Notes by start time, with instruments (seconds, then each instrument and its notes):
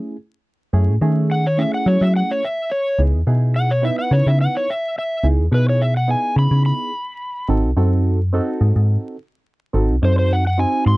Already playing: reed electric piano A3 C#4 E4 G#4
0.73 fm bass F#2, reed electric piano A3 C#4 E4 G#4
0.88 fm bass A2
1.01 fm bass D#3, reed electric piano A3 C#4 G#4 E5
1.31 electric slide guitar F#5
1.47 electric slide guitar C#5
1.57 reed electric piano A3 C#4 E4 G#4, electric slide guitar E5
1.74 electric slide guitar F#5
1.86 fm bass F#3, electric slide guitar C#5
2.01 fm bass F#3, electric slide guitar E5
2.16 electric slide guitar F#5
2.31 electric slide guitar C#5
2.45 electric slide guitar E5
2.72 electric slide guitar C#5
2.98 fm bass C#2, reed electric piano B3 D#4 E4 G#4
3.13 fm bass E2
3.27 fm bass B2, reed electric piano B3 D#4 E4 G#4
3.56 electric slide guitar F#5
3.71 electric slide guitar C#5
3.82 reed electric piano B3 D#4 E4 B4, electric slide guitar E5
3.99 electric slide guitar F#5
4.11 fm bass C#3, electric slide guitar C#5
4.26 fm bass C#3, electric slide guitar E5
4.41 electric slide guitar F#5
4.57 electric slide guitar C#5
4.70 electric slide guitar E5
4.99 electric slide guitar E5
5.23 fm bass C#2, reed electric piano B3 D#4 E4 G#4
5.38 fm bass E2
5.51 fm bass B2, reed electric piano B3 D#4 E4 G#4, electric slide guitar B4
5.69 electric slide guitar C#5
5.82 electric slide guitar E5
5.97 electric slide guitar F#5
6.08 reed electric piano B3 D#4 E4 G#4, electric slide guitar G#5
6.36 fm bass C#3, electric slide guitar B5
6.51 fm bass C#3
6.66 electric slide guitar B5
7.48 fm bass G#1, reed electric piano C4 D#4 F#4 A4
7.64 fm bass C2
7.76 fm bass F#2, reed electric piano C4 D#4 F#4 A4
8.33 reed electric piano C4 D#4 F#4 A4
8.61 fm bass G#2
8.76 fm bass G#2
9.73 fm bass G#1, reed electric piano C4 D#4 F#4 A4
9.90 fm bass C2
10.02 fm bass F#2, reed electric piano C4 D#4 F#4 A4, electric slide guitar C5
10.19 electric slide guitar C5
10.33 electric slide guitar F#5
10.47 electric slide guitar F#5
10.58 reed electric piano C4 D#4 F#4 C5, electric slide guitar G#5
10.86 fm bass G#2, electric slide guitar C6